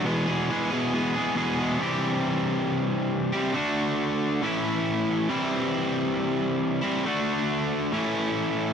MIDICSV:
0, 0, Header, 1, 2, 480
1, 0, Start_track
1, 0, Tempo, 436999
1, 63, Time_signature, 4, 2, 24, 8
1, 9589, End_track
2, 0, Start_track
2, 0, Title_t, "Overdriven electric guitar"
2, 0, Program_c, 0, 29
2, 47, Note_on_c, 0, 47, 99
2, 49, Note_on_c, 0, 40, 97
2, 62, Note_on_c, 0, 52, 106
2, 64, Note_on_c, 0, 56, 112
2, 73, Note_on_c, 0, 59, 98
2, 73, Note_on_c, 0, 68, 107
2, 270, Note_off_c, 0, 68, 0
2, 283, Note_on_c, 0, 68, 78
2, 284, Note_off_c, 0, 59, 0
2, 290, Note_off_c, 0, 56, 0
2, 297, Note_on_c, 0, 59, 77
2, 303, Note_on_c, 0, 56, 68
2, 307, Note_off_c, 0, 52, 0
2, 321, Note_on_c, 0, 52, 62
2, 525, Note_off_c, 0, 52, 0
2, 533, Note_off_c, 0, 47, 0
2, 534, Note_off_c, 0, 40, 0
2, 538, Note_on_c, 0, 52, 73
2, 541, Note_off_c, 0, 56, 0
2, 544, Note_off_c, 0, 59, 0
2, 554, Note_on_c, 0, 56, 75
2, 557, Note_on_c, 0, 59, 84
2, 560, Note_off_c, 0, 68, 0
2, 573, Note_on_c, 0, 68, 77
2, 753, Note_off_c, 0, 68, 0
2, 766, Note_on_c, 0, 68, 95
2, 771, Note_off_c, 0, 59, 0
2, 774, Note_off_c, 0, 56, 0
2, 776, Note_off_c, 0, 52, 0
2, 784, Note_on_c, 0, 59, 86
2, 787, Note_on_c, 0, 56, 81
2, 789, Note_on_c, 0, 52, 84
2, 800, Note_on_c, 0, 40, 77
2, 800, Note_on_c, 0, 47, 82
2, 998, Note_off_c, 0, 52, 0
2, 1011, Note_off_c, 0, 56, 0
2, 1011, Note_on_c, 0, 52, 69
2, 1023, Note_off_c, 0, 59, 0
2, 1024, Note_on_c, 0, 56, 69
2, 1034, Note_off_c, 0, 68, 0
2, 1036, Note_on_c, 0, 59, 82
2, 1047, Note_on_c, 0, 68, 76
2, 1239, Note_off_c, 0, 68, 0
2, 1252, Note_on_c, 0, 68, 70
2, 1255, Note_off_c, 0, 59, 0
2, 1262, Note_off_c, 0, 56, 0
2, 1268, Note_off_c, 0, 47, 0
2, 1269, Note_off_c, 0, 40, 0
2, 1269, Note_on_c, 0, 59, 67
2, 1273, Note_off_c, 0, 52, 0
2, 1275, Note_on_c, 0, 56, 66
2, 1286, Note_on_c, 0, 52, 55
2, 1488, Note_on_c, 0, 40, 90
2, 1492, Note_off_c, 0, 52, 0
2, 1493, Note_on_c, 0, 47, 95
2, 1494, Note_off_c, 0, 56, 0
2, 1499, Note_off_c, 0, 59, 0
2, 1501, Note_off_c, 0, 68, 0
2, 1505, Note_on_c, 0, 52, 89
2, 1507, Note_on_c, 0, 56, 103
2, 1512, Note_on_c, 0, 59, 99
2, 1514, Note_on_c, 0, 68, 97
2, 1737, Note_off_c, 0, 68, 0
2, 1739, Note_off_c, 0, 59, 0
2, 1751, Note_on_c, 0, 68, 69
2, 1752, Note_on_c, 0, 59, 79
2, 1754, Note_off_c, 0, 56, 0
2, 1767, Note_off_c, 0, 52, 0
2, 1767, Note_on_c, 0, 56, 67
2, 1780, Note_on_c, 0, 52, 62
2, 1958, Note_off_c, 0, 40, 0
2, 1960, Note_off_c, 0, 47, 0
2, 1966, Note_off_c, 0, 52, 0
2, 1969, Note_off_c, 0, 68, 0
2, 1970, Note_off_c, 0, 59, 0
2, 1973, Note_on_c, 0, 48, 83
2, 1977, Note_off_c, 0, 56, 0
2, 1979, Note_on_c, 0, 52, 89
2, 1987, Note_on_c, 0, 55, 84
2, 2004, Note_on_c, 0, 60, 87
2, 2007, Note_on_c, 0, 67, 84
2, 3638, Note_off_c, 0, 60, 0
2, 3638, Note_off_c, 0, 67, 0
2, 3641, Note_off_c, 0, 48, 0
2, 3644, Note_off_c, 0, 52, 0
2, 3648, Note_off_c, 0, 55, 0
2, 3651, Note_on_c, 0, 60, 75
2, 3651, Note_on_c, 0, 67, 76
2, 3660, Note_on_c, 0, 55, 72
2, 3672, Note_on_c, 0, 52, 72
2, 3676, Note_on_c, 0, 48, 67
2, 3869, Note_off_c, 0, 52, 0
2, 3873, Note_on_c, 0, 50, 85
2, 3880, Note_off_c, 0, 60, 0
2, 3880, Note_off_c, 0, 67, 0
2, 3882, Note_off_c, 0, 55, 0
2, 3887, Note_on_c, 0, 57, 84
2, 3893, Note_off_c, 0, 48, 0
2, 3897, Note_on_c, 0, 62, 94
2, 3910, Note_on_c, 0, 66, 94
2, 4833, Note_off_c, 0, 50, 0
2, 4839, Note_off_c, 0, 57, 0
2, 4845, Note_off_c, 0, 62, 0
2, 4849, Note_on_c, 0, 45, 83
2, 4851, Note_off_c, 0, 66, 0
2, 4863, Note_on_c, 0, 52, 87
2, 4869, Note_on_c, 0, 57, 83
2, 4871, Note_on_c, 0, 61, 83
2, 4892, Note_on_c, 0, 64, 92
2, 5799, Note_off_c, 0, 52, 0
2, 5801, Note_off_c, 0, 45, 0
2, 5807, Note_on_c, 0, 48, 88
2, 5811, Note_off_c, 0, 57, 0
2, 5812, Note_off_c, 0, 61, 0
2, 5812, Note_on_c, 0, 52, 84
2, 5819, Note_on_c, 0, 55, 91
2, 5823, Note_off_c, 0, 64, 0
2, 5824, Note_on_c, 0, 60, 92
2, 5834, Note_on_c, 0, 64, 91
2, 7470, Note_off_c, 0, 64, 0
2, 7481, Note_off_c, 0, 48, 0
2, 7483, Note_off_c, 0, 52, 0
2, 7483, Note_on_c, 0, 64, 83
2, 7487, Note_off_c, 0, 55, 0
2, 7489, Note_off_c, 0, 60, 0
2, 7505, Note_on_c, 0, 55, 67
2, 7507, Note_on_c, 0, 60, 78
2, 7520, Note_on_c, 0, 52, 69
2, 7524, Note_on_c, 0, 48, 64
2, 7718, Note_off_c, 0, 64, 0
2, 7729, Note_off_c, 0, 55, 0
2, 7730, Note_off_c, 0, 60, 0
2, 7731, Note_off_c, 0, 52, 0
2, 7735, Note_on_c, 0, 50, 87
2, 7738, Note_off_c, 0, 48, 0
2, 7751, Note_on_c, 0, 57, 97
2, 7765, Note_on_c, 0, 62, 99
2, 7773, Note_on_c, 0, 66, 95
2, 8684, Note_off_c, 0, 50, 0
2, 8692, Note_off_c, 0, 57, 0
2, 8698, Note_on_c, 0, 45, 84
2, 8699, Note_off_c, 0, 62, 0
2, 8703, Note_off_c, 0, 66, 0
2, 8713, Note_on_c, 0, 52, 81
2, 8721, Note_on_c, 0, 57, 87
2, 8723, Note_on_c, 0, 61, 86
2, 8733, Note_on_c, 0, 64, 90
2, 9589, Note_off_c, 0, 45, 0
2, 9589, Note_off_c, 0, 52, 0
2, 9589, Note_off_c, 0, 57, 0
2, 9589, Note_off_c, 0, 61, 0
2, 9589, Note_off_c, 0, 64, 0
2, 9589, End_track
0, 0, End_of_file